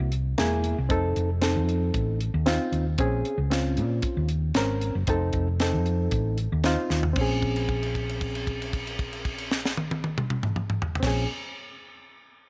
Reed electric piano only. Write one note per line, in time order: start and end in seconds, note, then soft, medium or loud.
0.00 0.10 F#4 medium
0.38 0.76 A#3 medium
0.38 0.76 E4 medium
0.38 0.77 G#4 medium
0.89 1.28 C4 medium
0.89 1.28 D#4 medium
0.89 1.29 A4 medium
1.41 2.18 C4 medium
1.41 2.18 D#4 medium
1.41 2.19 A4 medium
2.46 2.85 C4 medium
2.46 2.85 D#4 medium
2.46 2.85 F4 medium
2.99 3.37 C4 medium
2.99 3.37 C#4 medium
2.99 3.38 G#4 medium
3.50 4.27 C4 medium
3.50 4.27 C#4 medium
3.50 4.28 F4 medium
4.55 4.94 C4 medium
4.55 4.94 C#4 medium
4.55 4.94 A#4 medium
5.08 5.46 C4 medium
5.08 5.46 D#4 medium
5.08 5.47 A4 medium
5.60 6.36 C4 medium
5.60 6.36 D#4 medium
5.60 6.37 A4 medium
6.64 7.03 C4 medium
6.64 7.03 D#4 medium
6.64 7.03 F4 medium
7.13 10.91 C4 medium
7.17 10.93 C#4 medium
7.17 10.95 G#4 medium
11.00 11.23 C4 medium
11.00 11.25 C#4 medium
11.07 11.27 G#4 medium